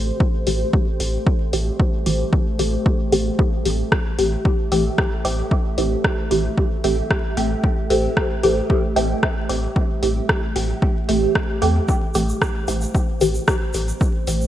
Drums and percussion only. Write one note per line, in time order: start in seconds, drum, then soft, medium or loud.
0.20 kick loud
0.47 open hi-hat medium
0.73 kick loud
1.00 open hi-hat medium
1.26 kick loud
1.53 open hi-hat medium
1.80 kick loud
2.06 open hi-hat medium
2.33 kick loud
2.59 open hi-hat medium
2.86 kick loud
3.12 open hi-hat medium
3.39 kick loud
3.65 open hi-hat medium
3.92 kick loud
3.92 cross-stick medium
4.19 open hi-hat medium
4.45 kick loud
4.72 open hi-hat medium
4.98 kick loud
4.98 cross-stick medium
5.25 open hi-hat medium
5.51 kick loud
5.78 open hi-hat medium
6.04 kick loud
6.04 cross-stick medium
6.31 open hi-hat medium
6.57 kick loud
6.84 open hi-hat medium
7.11 kick loud
7.11 cross-stick medium
7.37 open hi-hat medium
7.64 kick loud
7.90 open hi-hat medium
8.17 kick loud
8.17 cross-stick medium
8.43 open hi-hat medium
8.70 kick loud
8.96 open hi-hat medium
9.23 kick loud
9.23 cross-stick medium
9.49 open hi-hat medium
9.76 kick loud
10.03 open hi-hat medium
10.29 kick loud
10.29 cross-stick medium
10.56 open hi-hat medium
10.82 kick loud
11.09 open hi-hat medium
11.35 kick loud
11.35 cross-stick medium
11.62 open hi-hat medium
11.88 kick loud
11.88 shaker soft
12.14 open hi-hat medium
12.14 shaker medium
12.29 shaker medium
12.42 kick loud
12.42 cross-stick medium
12.42 shaker soft
12.68 open hi-hat medium
12.68 shaker medium
12.81 shaker medium
12.95 kick loud
12.95 shaker soft
13.21 open hi-hat medium
13.21 shaker medium
13.34 shaker medium
13.48 kick loud
13.48 cross-stick medium
13.48 shaker soft
13.74 open hi-hat medium
13.74 shaker medium
13.88 shaker medium
14.01 kick loud
14.01 shaker soft
14.27 open hi-hat medium
14.27 shaker loud
14.41 shaker medium